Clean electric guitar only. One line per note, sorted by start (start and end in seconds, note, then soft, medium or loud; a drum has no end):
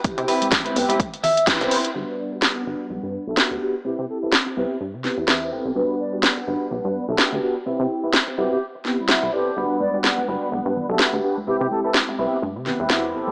0.28 0.47 C4 medium
0.28 0.47 E4 loud
0.28 0.47 B4 loud
0.65 0.76 C4 medium
0.65 0.76 E4 medium
0.65 0.76 B4 medium
0.89 1.00 C4 loud
0.89 1.00 E4 loud
0.89 1.00 G4 loud
1.13 muted clean electric guitar stroke soft
1.24 1.46 E5 medium
1.47 1.92 G5 medium
1.60 1.90 C4 medium
1.60 1.90 E4 medium
1.60 1.90 B4 medium
1.94 2.13 F#4 loud
1.94 2.13 G4 medium
2.32 2.42 F#4 medium
2.32 2.43 G4 medium
2.32 2.43 B4 medium
2.55 muted clean electric guitar stroke loud
2.66 2.85 F#4 medium
2.66 2.85 G4 medium
2.66 2.85 B4 medium
3.03 muted clean electric guitar stroke soft
3.37 3.51 F#4 medium
3.37 3.51 G4 medium
3.37 3.51 B4 medium
3.61 muted clean electric guitar stroke soft
3.75 muted clean electric guitar stroke soft
3.85 4.04 C4 loud
3.85 4.04 E4 medium
3.85 4.04 B4 loud
4.23 4.33 C4 medium
4.23 4.33 E4 medium
4.23 4.33 B4 medium
4.47 muted clean electric guitar stroke loud
4.57 4.76 C4 medium
4.57 4.76 E4 medium
4.57 4.76 G4 medium
4.94 muted clean electric guitar stroke soft
5.27 5.42 C4 medium
5.27 5.42 E4 medium
5.27 5.42 B4 medium
5.27 5.50 E5 medium
5.52 5.74 G5 medium
5.52 muted clean electric guitar stroke soft
5.75 5.94 F#4 loud
5.75 5.94 G4 medium
5.75 5.94 B4 medium
6.13 6.23 F#4 medium
6.13 6.24 G4 medium
6.13 6.24 B4 medium
6.37 muted clean electric guitar stroke loud
6.47 6.66 F#4 medium
6.47 6.66 G4 medium
6.47 6.66 B4 medium
6.84 muted clean electric guitar stroke soft
7.19 7.32 F#4 medium
7.19 7.32 G4 medium
7.19 7.32 B4 medium
7.43 muted clean electric guitar stroke soft
7.56 muted clean electric guitar stroke soft
7.66 7.85 C4 loud
7.66 7.85 E4 medium
7.66 7.85 B4 loud
8.04 8.14 C4 medium
8.04 8.14 E4 medium
8.04 8.14 B4 medium
8.27 muted clean electric guitar stroke loud
8.38 8.57 C4 medium
8.38 8.57 E4 medium
8.38 8.57 F#4 medium
8.75 muted clean electric guitar stroke soft
9.09 9.23 C4 medium
9.09 9.23 E4 medium
9.09 9.23 F#4 medium
9.09 9.32 E5 medium
9.33 9.55 D5 medium
9.33 muted clean electric guitar stroke soft
9.46 muted clean electric guitar stroke soft
9.57 9.76 F#4 loud
9.57 9.76 G4 medium
9.57 9.76 B4 medium
9.94 10.05 F#4 medium
9.94 10.05 G4 medium
9.94 10.05 D5 medium
10.18 muted clean electric guitar stroke loud
10.28 10.47 F#4 medium
10.28 10.47 G4 medium
10.28 10.47 B4 medium
10.65 muted clean electric guitar stroke soft
10.99 11.13 F#4 medium
10.99 11.13 G4 medium
10.99 11.13 B4 medium
11.23 muted clean electric guitar stroke soft
11.37 muted clean electric guitar stroke soft
11.47 11.66 C4 loud
11.47 11.66 E4 medium
11.47 11.66 B4 loud
11.84 11.95 C4 medium
11.84 11.95 E4 medium
11.84 11.95 B4 medium
12.09 muted clean electric guitar stroke loud
12.19 12.38 C4 medium
12.19 12.38 E4 medium
12.19 12.38 B4 medium
12.56 muted clean electric guitar stroke soft
12.90 13.04 C4 medium
12.90 13.04 E4 medium
12.90 13.04 F#4 medium
13.14 muted clean electric guitar stroke soft
13.28 muted clean electric guitar stroke soft